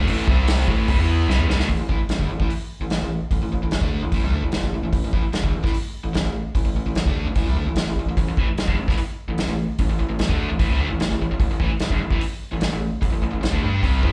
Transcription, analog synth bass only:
0.08 0.27 A1 loud
0.28 0.66 C2 medium
0.68 0.87 A1 loud
0.88 0.97 C2 medium
0.97 1.26 E2 medium
1.28 1.37 C2 loud
1.38 1.46 E2 medium
1.46 1.56 C2 loud
1.56 1.67 D2 medium
1.68 1.77 A1 medium
1.78 1.88 A1 medium
1.89 1.98 A1 medium
1.98 2.08 A1 soft
2.08 2.19 A1 medium
2.20 2.29 G1 medium
2.30 2.40 A1 medium
2.40 2.50 A1 medium
2.80 2.90 A1 medium
2.91 3.01 A1 medium
3.02 3.20 A1 medium
3.31 3.41 A1 medium
3.43 3.52 A1 medium
3.53 3.62 A1 medium
3.63 3.72 A1 medium
3.73 3.81 A1 medium
3.81 4.01 D2 medium
4.03 4.11 A1 medium
4.12 4.22 A1 medium
4.23 4.33 C2 medium
4.34 4.43 D2 medium
4.44 4.53 A1 medium
4.55 4.62 A1 medium
4.63 4.71 A1 medium
4.72 4.82 A1 medium
4.82 4.92 A1 medium
4.92 5.02 A1 medium
5.03 5.12 A1 medium
5.13 5.23 A1 medium
5.24 5.32 A1 soft
5.33 5.42 A1 medium
5.43 5.53 G1 medium
5.54 5.63 A1 medium
5.64 5.73 A1 medium
5.74 5.93 A1 soft
6.05 6.14 A1 medium
6.15 6.24 A1 medium
6.25 6.44 A1 medium
6.55 6.64 A1 medium
6.64 6.74 A1 medium
6.74 6.84 A1 medium
6.86 6.95 A1 medium
6.95 7.05 A1 medium
7.06 7.24 D2 medium
7.24 7.35 A1 medium
7.36 7.46 A1 medium
7.46 7.55 C2 medium
7.55 7.64 D2 medium
7.65 7.74 A1 medium
7.75 7.85 A1 medium
7.85 7.95 A1 medium
7.95 8.05 A1 medium
8.05 8.16 A1 medium
8.17 8.25 A1 medium
8.26 8.36 A1 medium
8.37 8.46 A1 medium
8.46 8.55 A1 soft
8.56 8.66 A1 medium
8.68 8.77 G1 medium
8.78 8.87 A1 medium
8.88 8.97 A1 medium
8.97 9.16 A1 soft
9.28 9.36 A1 medium
9.37 9.47 A1 medium
9.47 9.67 A1 medium
9.79 9.88 A1 medium
9.90 9.99 A1 medium
10.00 10.09 A1 medium
10.09 10.19 A1 medium
10.19 10.28 A1 medium
10.29 10.48 D2 medium
10.49 10.59 A1 medium
10.59 10.69 A1 medium
10.69 10.79 C2 medium
10.80 10.89 D2 medium
10.90 11.00 A1 medium
11.01 11.10 A1 medium
11.11 11.20 A1 medium
11.21 11.30 A1 medium
11.31 11.39 A1 medium
11.40 11.49 A1 medium
11.51 11.59 A1 medium
11.60 11.70 A1 medium
11.70 11.79 A1 soft
11.79 11.90 A1 medium
11.90 12.00 G1 medium
12.01 12.10 A1 medium
12.11 12.20 A1 medium
12.21 12.40 A1 soft
12.52 12.61 A1 medium
12.62 12.71 A1 medium
12.73 12.91 A1 medium
13.02 13.12 A1 medium
13.13 13.21 A1 medium
13.21 13.31 A1 medium
13.34 13.42 A1 medium
13.43 13.52 A1 medium
13.53 13.62 D2 medium
13.64 13.82 G2 loud
13.83 14.02 C2 medium
14.03 14.12 E2 medium

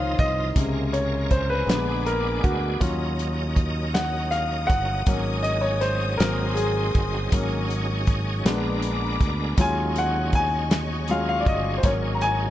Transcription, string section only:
0.00 0.54 F5 medium
0.00 1.66 C6 medium
0.00 0.55 D#6 medium
0.57 2.79 G#5 medium
0.57 2.79 A#5 medium
1.70 2.81 B5 medium
1.70 2.81 D6 medium
2.84 5.06 D#5 medium
2.84 8.43 D#6 medium
5.07 8.42 G#5 medium
6.20 7.32 C6 medium
7.33 8.44 C#6 medium
8.47 12.50 G#5 medium
8.47 9.58 A#5 medium
8.47 9.58 B5 medium
8.47 9.58 D6 medium
9.57 11.82 D#5 medium
9.57 12.50 C#6 medium
11.85 12.50 D#5 medium

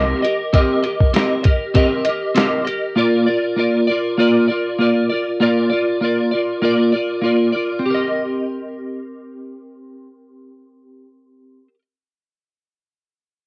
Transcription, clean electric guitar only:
0.00 0.23 C4 medium
0.00 0.24 G4 medium
0.00 0.23 A#4 medium
0.00 0.21 D#5 medium
0.22 0.53 G4 soft
0.22 0.54 A#4 soft
0.22 0.53 D#5 medium
0.53 0.84 C4 medium
0.53 0.84 G4 medium
0.53 0.83 A#4 medium
0.53 0.82 D#5 medium
0.83 1.14 G4 soft
0.83 1.15 A#4 soft
0.83 1.14 D#5 medium
1.14 1.44 C4 medium
1.14 1.45 G4 medium
1.14 1.44 A#4 medium
1.14 1.42 D#5 medium
1.44 1.74 G4 soft
1.44 1.75 A#4 soft
1.44 1.75 D#5 soft
1.74 2.05 C4 medium
1.74 2.06 G4 medium
1.74 2.06 A#4 medium
1.74 2.04 D#5 medium
2.05 2.35 G4 soft
2.05 2.36 A#4 soft
2.05 2.36 D#5 medium
2.35 2.66 C4 medium
2.35 2.67 G4 medium
2.35 2.66 A#4 medium
2.35 2.64 D#5 medium
2.65 2.96 G4 soft
2.65 2.96 A#4 soft
2.65 2.96 D#5 soft
2.96 3.27 A#3 medium
2.96 3.27 F4 medium
2.96 3.27 A#4 medium
2.96 3.25 D5 medium
3.26 3.56 F4 soft
3.26 3.57 A#4 soft
3.26 3.57 D5 medium
3.56 3.87 A#3 soft
3.56 3.88 F4 medium
3.56 3.88 A#4 medium
3.56 3.86 D5 medium
3.87 4.18 F4 soft
3.87 4.18 A#4 medium
3.87 4.18 D5 medium
4.17 4.48 A#3 medium
4.17 4.49 F4 medium
4.17 4.48 A#4 medium
4.17 4.46 D5 medium
4.48 4.79 F4 soft
4.48 4.79 A#4 soft
4.48 4.79 D5 soft
4.79 5.09 A#3 medium
4.79 5.10 F4 medium
4.79 5.10 A#4 medium
4.79 5.08 D5 medium
5.10 5.40 F4 soft
5.10 5.41 A#4 soft
5.10 5.40 D5 soft
5.40 5.70 A#3 medium
5.40 5.71 F4 medium
5.40 5.71 A#4 medium
5.40 5.68 D5 medium
5.70 6.01 F4 soft
5.70 6.02 A#4 soft
5.70 6.00 D5 medium
6.01 6.31 A#3 medium
6.01 6.32 F4 medium
6.01 6.32 A#4 medium
6.01 6.30 D5 medium
6.31 6.62 F4 soft
6.31 6.63 A#4 soft
6.31 6.61 D5 soft
6.62 6.92 A#3 medium
6.62 6.92 F4 medium
6.62 6.92 A#4 medium
6.62 6.91 D5 medium
6.92 7.22 F4 soft
6.92 7.23 A#4 soft
6.92 7.22 D5 soft
7.22 7.52 A#3 medium
7.22 7.53 F4 medium
7.22 7.54 A#4 medium
7.26 7.51 D5 medium
7.52 7.85 F4 soft
7.52 7.84 A#4 soft
7.52 7.83 D5 soft
7.79 11.67 C4 medium
7.86 11.74 G4 medium
7.90 11.79 A#4 medium
7.95 11.82 D#5 medium

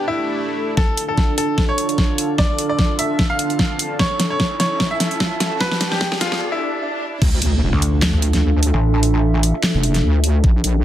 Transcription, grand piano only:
0.08 0.70 E4 medium
0.77 1.02 A4 medium
1.09 1.32 A4 medium
1.38 1.62 A4 medium
1.69 2.31 C#5 medium
2.38 2.63 D5 medium
2.69 2.93 D5 medium
2.99 3.23 E5 loud
3.30 3.92 F5 medium
3.99 4.24 C#5 loud
4.30 4.54 C#5 medium
4.60 4.84 C#5 loud
4.91 5.53 E5 medium
5.61 5.85 B4 loud
5.92 6.15 G4 medium
6.21 6.45 F4 medium
6.52 7.14 E4 medium

